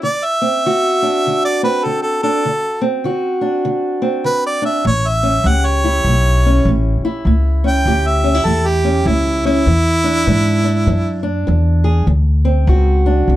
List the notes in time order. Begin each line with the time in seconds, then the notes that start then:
0.03 D3 D5
0.25 E5
0.42 C4
0.66 D3 F#4
1.02 D4
1.27 D3
1.45 D5
1.63 C4 B4
1.84 D3 A4
2.02 A4
2.23 D4 A4
2.45 D3
2.81 C4
3.04 D3 F#4
3.41 D4
3.65 D3
4.02 C4
4.24 D3 B4
4.46 D5
4.62 D4 E5
4.85 A1 A2 C#5
5.08 E5
5.23 C#4
5.44 C#2 A2 G4 F#5
5.65 C#5
5.84 E4
6.04 B1 A2
6.46 C#4
6.65 A1 A2
7.01 E4, muted upright bass stroke
7.25 C#2 A2
7.64 C#4 G5
7.85 D2 A2 G4
8.07 E5
8.24 C#4
8.34 E4
8.45 E2 A2 A4
8.68 G4
8.84 C#4
9.05 C#2 A2 E4
9.45 C#4 E4
9.66 E2 E3
10.04 D4
10.27 G#2 E3 D4
10.64 D4
10.86 F#2 E3
11.23 D4
11.47 E2 E3
11.84 G#4
12.07 D2 D3
12.45 C4
12.67 C#2 F#4
13.06 D4
13.28 C2 D3